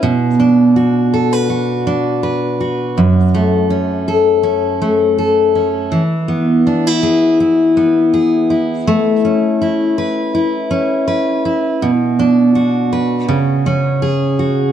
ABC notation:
X:1
M:4/4
L:1/16
Q:"Swing 16ths" 1/4=82
K:F#m
V:1 name="Steel-string acoustic guitar"
B,,2 D2 F2 A B F2 D2 B2 F2 | F,,2 A,2 C2 A2 C2 A,2 A2 C2 | E,2 B,2 D E G2 E2 B,2 G2 E2 | A,2 C2 E2 B2 E2 C2 B2 E2 |
B,,2 D2 F2 B2 C,2 C2 G2 F2 |]